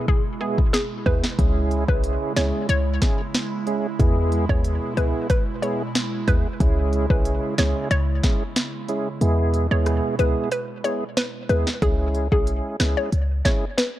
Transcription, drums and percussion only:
0.08 kick
0.58 kick
0.74 snare
1.06 kick
1.24 snare
1.39 kick, closed hi-hat
1.71 closed hi-hat
1.88 kick
2.04 closed hi-hat
2.36 snare, closed hi-hat
2.69 closed hi-hat
3.02 kick, snare, closed hi-hat
3.34 snare, closed hi-hat
3.67 closed hi-hat
4.00 kick, closed hi-hat
4.32 closed hi-hat
4.49 kick
4.64 closed hi-hat
4.97 closed hi-hat
5.30 kick, closed hi-hat
5.63 closed hi-hat
5.95 snare, closed hi-hat
6.28 kick, closed hi-hat
6.60 kick, closed hi-hat
6.93 closed hi-hat
7.10 kick
7.25 closed hi-hat
7.58 snare, closed hi-hat
7.91 closed hi-hat
8.23 kick, snare, closed hi-hat
8.56 snare, closed hi-hat
8.88 closed hi-hat
9.21 closed hi-hat
9.54 closed hi-hat
9.86 cross-stick, closed hi-hat
10.19 closed hi-hat
10.52 closed hi-hat
10.84 closed hi-hat
11.17 snare, closed hi-hat
11.49 closed hi-hat
11.67 snare
11.82 kick, closed hi-hat
12.15 closed hi-hat
12.32 kick
12.47 closed hi-hat
12.80 snare, closed hi-hat
13.12 closed hi-hat
13.45 kick, snare, closed hi-hat
13.78 snare, closed hi-hat

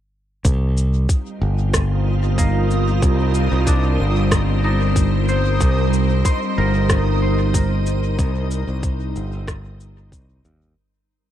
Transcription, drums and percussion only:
0.45 kick, cabasa
0.77 cabasa
1.09 kick, cabasa
1.74 kick, cross-stick, cabasa
2.38 kick, cabasa
2.71 cabasa
3.02 kick, cabasa
3.34 cabasa
3.67 kick, cabasa
4.31 kick, cross-stick, cabasa
4.96 kick, cabasa
5.29 cabasa
5.61 kick, cabasa
5.93 cabasa
6.25 kick, cabasa
6.90 kick, cross-stick, cabasa
7.54 kick, cabasa
7.86 cabasa
8.19 kick, cabasa
8.51 cabasa
8.83 kick, cabasa
9.16 cabasa
9.47 kick, cross-stick, cabasa
9.80 cabasa
10.12 kick, cabasa
10.45 cabasa

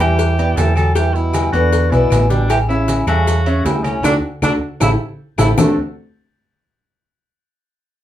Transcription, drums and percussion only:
0.00 cowbell, low agogo, maracas
0.19 cowbell, high conga, low conga, maracas
0.38 high conga, low agogo, maracas
0.57 cowbell, high conga, low timbale, low agogo, maracas
0.76 high conga, low agogo, claves, maracas
0.95 cowbell, maracas
1.15 high conga, maracas
1.33 cowbell, high conga, low timbale, low agogo, claves, maracas
1.53 high conga, low agogo, maracas
1.72 cowbell, high conga, maracas
1.92 low agogo, maracas
2.10 cowbell, high conga, low timbale, low agogo, claves, maracas
2.30 cowbell, high conga, maracas
2.49 cowbell, low agogo, claves, maracas
2.69 high conga, maracas
2.88 cowbell, high conga, low timbale, low agogo, maracas
3.07 cowbell, high conga, low conga, low agogo, claves, maracas
3.27 cowbell, high conga, low conga, maracas
3.46 high conga, low agogo, maracas
3.66 cowbell, high conga, low timbale, low agogo, maracas
3.84 high conga, low agogo, claves, maracas
4.03 cowbell, high conga, high timbale, claves, maracas
4.42 cowbell, high conga, high timbale, claves, maracas
4.80 cowbell, high conga, high timbale, claves, maracas
5.38 cowbell, high conga, high timbale, claves, maracas
5.58 low bongo, low conga, low timbale, claves, maracas

